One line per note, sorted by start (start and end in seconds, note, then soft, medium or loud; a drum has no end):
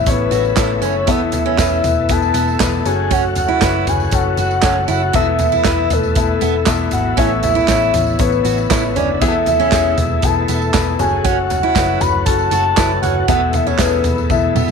0.00 1.10 A2 medium
0.00 1.06 C#3 medium
0.00 0.06 A3 loud
0.00 13.25 A3 medium
0.00 0.06 B3 medium
0.00 1.06 B3 medium
0.00 0.07 C#4 medium
0.00 0.07 E4 medium
0.00 2.82 E4 medium
0.00 1.10 B4 loud
0.00 0.11 E5 loud
0.06 0.27 A1 medium
0.06 0.48 A3 medium
0.06 0.49 B3 medium
0.06 0.49 C#4 medium
0.06 0.49 E4 medium
0.06 0.86 B4 medium
0.06 0.49 C#5 medium
0.06 kick loud
0.06 closed hi-hat loud
0.06 tambourine medium
0.31 0.53 A1 loud
0.31 0.43 F#4 medium
0.31 closed hi-hat medium
0.31 tambourine soft
0.45 tambourine soft
0.57 0.83 A1 loud
0.57 0.99 A3 medium
0.57 0.99 B3 medium
0.57 0.99 C#4 medium
0.57 0.69 E4 medium
0.57 1.00 E4 medium
0.57 0.99 A4 medium
0.57 kick loud
0.57 snare loud
0.57 clap medium
0.57 closed hi-hat medium
0.57 tambourine medium
0.82 1.08 F#1 medium
0.82 0.94 C#4 medium
0.82 1.12 C#5 loud
0.82 closed hi-hat medium
0.82 tambourine soft
1.07 1.49 E1 loud
1.07 2.84 B2 medium
1.07 2.83 E3 medium
1.07 1.80 E3 medium
1.07 1.20 B3 loud
1.07 1.50 B3 loud
1.07 1.50 E4 medium
1.07 1.50 A4 loud
1.07 1.35 E5 loud
1.07 kick loud
1.07 closed hi-hat medium
1.07 tambourine soft
1.32 2.12 E5 loud
1.32 closed hi-hat medium
1.32 floor tom medium
1.32 tambourine medium
1.46 1.82 C#4 medium
1.58 1.80 E1 loud
1.58 2.01 B3 medium
1.58 2.01 E4 medium
1.58 2.01 B4 medium
1.58 kick medium
1.58 snare medium
1.58 clap medium
1.58 closed hi-hat medium
1.58 tambourine medium
1.84 2.05 E1 medium
1.84 closed hi-hat medium
1.84 floor tom medium
1.84 tambourine medium
2.09 2.30 E1 loud
2.09 2.52 B3 medium
2.09 2.52 E4 medium
2.09 2.52 A4 medium
2.09 2.88 A5 loud
2.09 kick loud
2.09 closed hi-hat medium
2.09 tambourine soft
2.22 tambourine soft
2.34 2.55 E1 medium
2.34 2.47 B3 medium
2.34 closed hi-hat medium
2.34 tambourine medium
2.48 tambourine soft
2.60 2.81 E1 loud
2.60 2.86 B3 medium
2.60 2.86 E4 medium
2.60 2.86 B4 medium
2.60 kick loud
2.60 snare loud
2.60 clap loud
2.60 closed hi-hat medium
2.60 tambourine medium
2.85 3.48 F#1 medium
2.85 5.12 C#3 medium
2.85 5.12 F#3 medium
2.85 3.49 C#4 medium
2.85 3.49 F#4 medium
2.85 5.13 F#4 medium
2.85 3.49 A4 medium
2.85 3.14 G#5 loud
2.85 closed hi-hat medium
2.85 tambourine soft
3.11 3.23 C#4 medium
3.11 3.37 F#5 loud
3.11 kick loud
3.11 closed hi-hat medium
3.11 tambourine soft
3.35 3.90 F#5 loud
3.35 closed hi-hat medium
3.35 floor tom medium
3.35 tambourine medium
3.48 3.85 E4 medium
3.62 3.83 F#1 loud
3.62 4.04 C#4 medium
3.62 4.04 F#4 medium
3.62 4.04 B4 medium
3.62 kick loud
3.62 snare loud
3.62 clap medium
3.62 closed hi-hat medium
3.62 tambourine medium
3.87 4.08 F#1 medium
3.87 4.16 G#5 loud
3.87 closed hi-hat medium
3.87 floor tom medium
3.87 tambourine medium
4.00 tambourine soft
4.11 4.34 F#1 loud
4.11 4.55 C#4 medium
4.11 4.55 F#4 medium
4.11 4.55 A4 medium
4.11 4.39 F#5 loud
4.11 kick loud
4.11 closed hi-hat medium
4.11 tambourine medium
4.37 4.59 F#1 loud
4.37 4.51 F#4 medium
4.37 4.86 F#5 loud
4.37 closed hi-hat medium
4.37 tambourine medium
4.51 tambourine soft
4.63 4.85 F#1 loud
4.63 4.76 C#4 medium
4.63 5.06 C#4 medium
4.63 5.06 F#4 medium
4.63 5.06 A4 medium
4.63 kick loud
4.63 snare loud
4.63 clap loud
4.63 closed hi-hat medium
4.63 tambourine medium
4.88 5.10 F#1 medium
4.88 5.01 E4 medium
4.88 5.14 F#5 loud
4.88 closed hi-hat medium
4.88 tambourine soft
5.13 5.56 E1 loud
5.13 7.16 B2 medium
5.13 5.87 E3 medium
5.13 7.16 E3 medium
5.13 5.57 B3 loud
5.13 10.96 E4 medium
5.13 5.57 E4 medium
5.13 5.26 F#4 loud
5.13 5.57 A4 loud
5.13 5.39 E5 loud
5.13 kick loud
5.13 closed hi-hat medium
5.13 tambourine medium
5.39 5.95 E5 loud
5.39 closed hi-hat medium
5.39 floor tom medium
5.39 tambourine soft
5.52 5.88 E4 medium
5.52 tambourine soft
5.64 5.86 E1 loud
5.64 6.08 B3 medium
5.64 6.08 E4 medium
5.64 6.08 B4 medium
5.64 kick medium
5.64 snare medium
5.64 clap medium
5.64 closed hi-hat medium
5.64 tambourine medium
5.90 6.12 E1 medium
5.90 6.68 A4 loud
5.90 closed hi-hat medium
5.90 floor tom medium
5.90 tambourine medium
6.03 tambourine soft
6.15 6.37 E1 loud
6.15 6.59 B3 medium
6.15 6.59 E4 medium
6.15 6.59 A4 medium
6.15 kick loud
6.15 closed hi-hat medium
6.15 tambourine medium
6.41 6.63 E1 loud
6.41 6.54 B3 medium
6.41 closed hi-hat medium
6.41 tambourine medium
6.66 6.88 E1 loud
6.66 7.10 B3 medium
6.66 7.10 E4 medium
6.66 7.10 A4 loud
6.66 kick loud
6.66 snare loud
6.66 clap medium
6.66 closed hi-hat medium
6.66 tambourine medium
6.91 7.14 G#1 medium
6.91 7.21 F#5 medium
6.91 closed hi-hat medium
6.91 floor tom medium
6.91 tambourine soft
7.17 7.60 A1 loud
7.17 7.91 A2 medium
7.17 9.20 C#3 medium
7.17 7.61 B3 medium
7.17 9.20 B3 medium
7.17 7.30 C#4 medium
7.17 7.61 C#4 medium
7.17 7.61 E4 medium
7.17 7.61 A4 medium
7.17 7.61 C#5 loud
7.17 7.43 E5 loud
7.17 kick loud
7.17 closed hi-hat medium
7.17 tambourine soft
7.43 8.21 E5 loud
7.43 closed hi-hat medium
7.43 floor tom medium
7.43 tambourine soft
7.55 7.92 E4 medium
7.55 tambourine soft
7.68 7.90 A1 loud
7.68 8.11 B3 medium
7.68 8.11 C#4 medium
7.68 8.11 E4 medium
7.68 8.12 A4 medium
7.68 8.12 C#5 medium
7.68 kick medium
7.68 snare medium
7.68 clap medium
7.68 closed hi-hat medium
7.68 tambourine medium
7.94 8.15 A1 loud
7.94 closed hi-hat medium
7.94 floor tom medium
7.94 tambourine soft
8.07 tambourine soft
8.19 8.40 A1 medium
8.19 8.62 B3 medium
8.19 8.62 C#4 medium
8.19 8.62 E4 medium
8.19 8.62 A4 medium
8.19 8.97 B4 medium
8.19 8.62 C#5 medium
8.19 kick loud
8.19 closed hi-hat loud
8.19 tambourine medium
8.32 tambourine soft
8.44 8.66 A1 loud
8.44 8.57 F#4 medium
8.44 closed hi-hat medium
8.44 tambourine medium
8.58 tambourine soft
8.70 8.96 A1 loud
8.70 9.13 B3 medium
8.70 9.13 C#4 medium
8.70 8.83 E4 medium
8.70 9.13 E4 medium
8.70 9.13 A4 medium
8.70 9.13 C#5 medium
8.70 kick loud
8.70 snare loud
8.70 clap medium
8.70 closed hi-hat medium
8.70 tambourine medium
8.96 9.22 F#1 medium
8.96 9.08 C#4 medium
8.96 9.22 D5 medium
8.96 closed hi-hat medium
8.96 floor tom medium
8.96 tambourine soft
9.20 9.63 E1 loud
9.20 10.98 B2 medium
9.20 10.97 E3 medium
9.20 9.94 E3 medium
9.20 9.34 B3 loud
9.20 9.64 B3 medium
9.20 9.64 E4 medium
9.20 9.28 G#4 medium
9.20 9.46 E5 medium
9.20 kick loud
9.20 closed hi-hat medium
9.20 tambourine medium
9.28 9.67 A4 loud
9.46 10.25 E5 loud
9.46 closed hi-hat medium
9.46 floor tom medium
9.46 tambourine soft
9.60 9.95 C#4 medium
9.60 tambourine soft
9.72 9.93 E1 medium
9.72 10.15 B3 medium
9.72 10.15 E4 medium
9.72 10.15 G#4 medium
9.72 kick medium
9.72 snare medium
9.72 clap medium
9.72 closed hi-hat medium
9.72 tambourine medium
9.98 10.19 E1 medium
9.98 closed hi-hat medium
9.98 floor tom medium
9.98 tambourine soft
10.22 10.44 E1 loud
10.22 10.65 B3 medium
10.22 10.65 E4 medium
10.22 10.66 A4 medium
10.22 11.01 A5 loud
10.22 kick loud
10.22 closed hi-hat loud
10.22 tambourine medium
10.48 10.70 E1 medium
10.48 10.61 B3 medium
10.48 closed hi-hat medium
10.48 tambourine medium
10.62 tambourine soft
10.74 10.95 E1 loud
10.74 10.99 B3 medium
10.74 10.99 E4 medium
10.74 11.00 B4 medium
10.74 kick loud
10.74 snare loud
10.74 clap medium
10.74 closed hi-hat medium
10.74 tambourine medium
10.99 11.62 F#1 loud
10.99 13.26 C#3 medium
10.99 13.26 F#3 medium
10.99 11.63 C#4 medium
10.99 11.63 F#4 medium
10.99 13.26 F#4 medium
10.99 11.63 A4 medium
10.99 11.25 G#5 loud
10.99 closed hi-hat medium
10.99 floor tom medium
10.99 tambourine soft
11.24 11.37 C#4 loud
11.24 11.48 F#5 loud
11.24 kick loud
11.24 closed hi-hat medium
11.24 tambourine soft
11.48 12.02 F#5 loud
11.48 closed hi-hat medium
11.48 floor tom medium
11.48 tambourine medium
11.63 11.99 E4 medium
11.75 11.97 F#1 loud
11.75 12.18 C#4 medium
11.75 12.18 F#4 medium
11.75 12.18 B4 medium
11.75 kick medium
11.75 snare medium
11.75 clap medium
11.75 closed hi-hat medium
11.75 tambourine medium
12.00 12.22 F#1 medium
12.00 12.25 B5 loud
12.00 closed hi-hat medium
12.00 floor tom medium
12.00 tambourine medium
12.26 12.47 F#1 loud
12.26 12.69 C#4 medium
12.26 12.69 F#4 medium
12.26 12.69 A4 medium
12.26 12.50 A5 loud
12.26 kick loud
12.26 closed hi-hat loud
12.26 tambourine medium
12.38 tambourine soft
12.51 12.73 F#1 medium
12.51 12.64 F#4 medium
12.51 12.99 A5 loud
12.51 closed hi-hat medium
12.51 tambourine medium
12.77 12.98 F#1 loud
12.77 13.20 C#4 medium
12.77 12.90 E4 medium
12.77 13.20 F#4 medium
12.77 13.20 B4 medium
12.77 kick loud
12.77 snare loud
12.77 clap loud
12.77 closed hi-hat medium
12.77 tambourine medium
13.02 13.23 F#1 medium
13.02 13.15 C#4 medium
13.02 13.57 F#5 loud
13.02 closed hi-hat medium
13.02 floor tom medium
13.02 tambourine soft
13.28 13.70 E1 loud
13.28 14.71 B2 medium
13.28 14.71 E3 medium
13.28 14.01 E3 medium
13.28 14.71 A3 medium
13.28 13.40 B3 loud
13.28 13.71 B3 loud
13.28 14.71 E4 medium
13.28 13.71 E4 medium
13.28 13.71 A4 loud
13.28 kick loud
13.28 closed hi-hat medium
13.28 tambourine medium
13.53 13.68 E5 loud
13.53 closed hi-hat medium
13.53 floor tom medium
13.53 tambourine medium
13.67 14.02 C#4 medium
13.67 13.82 C#5 medium
13.67 tambourine soft
13.79 14.00 E1 loud
13.79 14.21 B3 medium
13.79 14.22 E4 medium
13.79 13.85 G#4 medium
13.79 13.92 B4 medium
13.79 kick loud
13.79 snare medium
13.79 clap medium
13.79 closed hi-hat medium
13.79 tambourine medium
13.86 14.25 A4 medium
13.93 14.28 B4 loud
14.04 14.25 E1 medium
14.04 closed hi-hat medium
14.04 floor tom medium
14.04 tambourine medium
14.18 tambourine soft
14.30 14.51 E1 loud
14.30 14.71 B3 medium
14.30 14.71 E4 medium
14.30 14.71 A4 medium
14.30 14.71 E5 medium
14.30 kick loud
14.30 high tom medium
14.30 tambourine soft
14.55 14.71 E1 loud
14.55 14.68 B3 medium
14.55 mid tom medium
14.55 tambourine medium